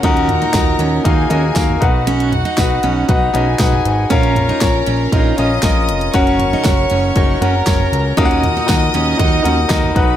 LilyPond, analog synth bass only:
\new Staff \with { instrumentName = "Analog synth bass" } { \clef bass \time 4/4 \key dis \minor \tempo 4 = 118 dis,4 dis,8 dis,8 dis,8 dis,8 dis,8 b,,8~ | b,,4 b,,8 b,,8 b,,8 b,,8 b,,8 gis,,8 | ais,,4 ais,,8 ais,,8 ais,,8 ais,,8 ais,,8 eis,,8 | fis,,4 fis,,8 fis,,8 fis,,8 fis,,8 fis,,8 cis,8 |
dis,4 dis,8 dis,8 dis,8 dis,8 dis,8 b,,8 | }